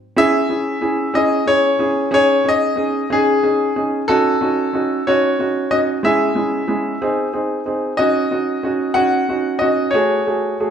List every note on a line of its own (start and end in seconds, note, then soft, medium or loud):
0.16 0.42 C#4 medium
0.16 0.43 E4 medium
0.16 0.43 G#4 loud
0.16 1.18 E5 loud
0.49 0.75 C#4 medium
0.49 0.75 E4 medium
0.49 0.75 G#4 medium
0.81 1.07 C#4 medium
0.81 1.07 E4 medium
0.81 1.07 G#4 medium
1.14 1.40 C#4 medium
1.14 1.40 E4 medium
1.14 1.40 G#4 medium
1.14 1.48 D#5 loud
1.46 1.72 C#4 medium
1.46 1.73 E4 medium
1.46 1.73 G#4 medium
1.46 2.08 C#5 loud
1.79 2.05 C#4 medium
1.79 2.05 E4 medium
1.79 2.05 G#4 medium
2.11 2.37 C#4 loud
2.11 2.37 D#4 medium
2.11 2.38 G#4 loud
2.11 2.46 C#5 loud
2.45 2.70 C#4 medium
2.45 2.70 D#4 medium
2.45 2.71 G#4 medium
2.49 3.14 D#5 loud
2.76 3.02 C#4 medium
2.76 3.03 D#4 medium
2.76 3.03 G#4 medium
3.10 3.36 C#4 medium
3.10 3.36 D#4 medium
3.10 3.36 G#4 loud
3.10 3.80 G#4 loud
3.43 3.68 C#4 medium
3.43 3.68 D#4 medium
3.43 3.69 G#4 medium
3.76 4.01 C#4 medium
3.76 4.01 D#4 medium
3.76 4.01 G#4 medium
4.08 4.34 C#4 medium
4.08 4.34 D#4 medium
4.08 4.34 F#4 loud
4.08 5.08 A4 loud
4.41 4.66 C#4 medium
4.41 4.66 D#4 medium
4.41 4.67 F#4 medium
4.73 4.99 C#4 medium
4.73 4.99 D#4 medium
4.73 4.99 F#4 medium
5.07 5.32 C#4 medium
5.07 5.32 D#4 medium
5.07 5.32 F#4 loud
5.07 5.73 C#5 medium
5.39 5.64 C#4 medium
5.39 5.64 D#4 medium
5.39 5.65 F#4 medium
5.71 5.96 C#4 medium
5.71 5.96 D#4 medium
5.71 5.96 F#4 medium
5.71 5.78 D#5 medium
6.03 6.29 G#3 medium
6.03 6.29 C#4 medium
6.03 6.29 E4 medium
6.03 6.29 G#4 loud
6.03 7.30 E5 loud
6.35 6.61 G#3 medium
6.35 6.62 C#4 medium
6.35 6.62 E4 medium
6.35 6.61 G#4 medium
6.68 6.94 G#3 medium
6.68 6.94 C#4 medium
6.68 6.94 E4 medium
6.68 6.94 G#4 medium
7.02 7.27 C4 medium
7.02 7.27 D#4 medium
7.02 7.27 G#4 loud
7.33 7.59 C4 medium
7.33 7.59 D#4 medium
7.33 7.59 G#4 medium
7.66 7.92 C4 medium
7.66 7.92 D#4 medium
7.66 7.92 G#4 medium
7.97 8.24 C#4 medium
7.97 8.24 D#4 medium
7.97 8.24 F#4 loud
7.97 8.99 D#5 loud
8.31 8.57 C#4 medium
8.31 8.57 D#4 medium
8.31 8.57 F#4 medium
8.63 8.89 C#4 medium
8.63 8.89 D#4 medium
8.63 8.90 F#4 medium
8.94 9.21 C#4 medium
8.94 9.22 D#4 medium
8.94 9.22 F#4 loud
8.94 9.62 F#5 loud
9.29 9.55 C#4 medium
9.29 9.55 D#4 medium
9.29 9.55 F#4 medium
9.59 9.87 C#4 medium
9.59 9.87 D#4 medium
9.59 9.87 F#4 medium
9.59 9.94 D#5 medium
9.91 10.20 A3 medium
9.91 10.20 F#4 medium
9.91 10.20 G#4 loud
9.91 10.70 C#5 medium
10.27 10.53 A3 medium
10.27 10.53 F#4 medium
10.27 10.53 G#4 medium
10.60 10.70 A3 medium
10.60 10.70 F#4 medium
10.60 10.70 G#4 medium